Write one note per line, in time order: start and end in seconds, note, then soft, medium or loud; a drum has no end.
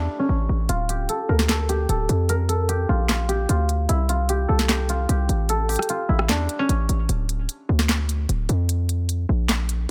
0.00 0.25 D4 medium
0.00 0.75 E4 medium
0.00 0.89 G4 medium
0.00 1.09 A4 loud
0.19 3.09 C#4 medium
0.29 0.48 A1 loud
0.49 0.68 A1 loud
0.69 1.08 D1 loud
0.69 2.89 F4 loud
0.69 closed hi-hat medium
0.89 1.69 G4 medium
0.89 closed hi-hat medium
1.09 1.35 A4 medium
1.09 closed hi-hat medium
1.29 1.87 D2 loud
1.29 1.55 A#4 medium
1.39 snare medium
1.49 1.89 A4 medium
1.49 snare loud
1.49 clap medium
1.49 closed hi-hat medium
1.69 2.68 G4 medium
1.69 closed hi-hat medium
1.89 2.08 D1 loud
1.89 2.35 A4 medium
1.89 closed hi-hat medium
2.09 2.86 F2 loud
2.09 closed hi-hat medium
2.29 2.55 A#4 loud
2.29 closed hi-hat medium
2.49 4.48 A4 medium
2.49 closed hi-hat medium
2.69 3.28 G4 medium
2.69 closed hi-hat medium
2.89 3.47 A#1 loud
2.89 3.09 F4 medium
3.09 3.49 F4 medium
3.09 snare loud
3.09 clap medium
3.09 closed hi-hat medium
3.29 4.29 G4 medium
3.29 closed hi-hat medium
3.49 3.88 D2 loud
3.49 3.95 F4 medium
3.49 closed hi-hat medium
3.69 closed hi-hat medium
3.89 4.47 C2 loud
3.89 4.15 E4 medium
3.89 closed hi-hat medium
4.09 4.89 F4 medium
4.09 closed hi-hat medium
4.29 4.68 G4 medium
4.29 closed hi-hat medium
4.48 5.07 C2 loud
4.48 5.49 A4 medium
4.59 snare medium
4.69 5.08 G4 medium
4.69 snare loud
4.69 clap medium
4.69 closed hi-hat medium
4.89 5.89 F4 medium
4.89 closed hi-hat medium
5.09 5.28 C2 loud
5.09 5.68 G4 medium
5.09 closed hi-hat medium
5.29 5.77 A1 loud
5.29 closed hi-hat medium
5.49 7.69 A4 loud
5.49 closed hi-hat medium
5.69 8.04 G4 medium
5.69 closed hi-hat soft
5.69 open hi-hat medium
5.76 cross-stick medium
5.76 closed hi-hat medium
5.82 closed hi-hat medium
5.89 6.15 F4 medium
5.89 closed hi-hat medium
6.09 6.31 A1 loud
6.09 8.70 E4 medium
6.19 cross-stick loud
6.29 6.48 E2 loud
6.29 6.65 D4 medium
6.29 snare loud
6.29 clap medium
6.29 closed hi-hat medium
6.49 closed hi-hat medium
6.59 9.49 C#4 medium
6.69 6.88 A1 loud
6.69 closed hi-hat medium
6.89 7.08 A1 loud
6.89 closed hi-hat medium
7.09 7.48 D1 loud
7.09 closed hi-hat medium
7.29 closed hi-hat medium
7.49 closed hi-hat medium
7.69 8.27 D2 loud
7.79 snare medium
7.89 snare loud
7.89 clap medium
7.89 closed hi-hat medium
8.09 closed hi-hat medium
8.29 8.48 D1 loud
8.29 closed hi-hat medium
8.49 9.26 F2 loud
8.49 closed hi-hat medium
8.69 closed hi-hat medium
8.89 closed hi-hat medium
9.09 closed hi-hat medium
9.29 9.87 A#1 loud
9.49 snare loud
9.49 clap medium
9.49 closed hi-hat medium
9.69 closed hi-hat medium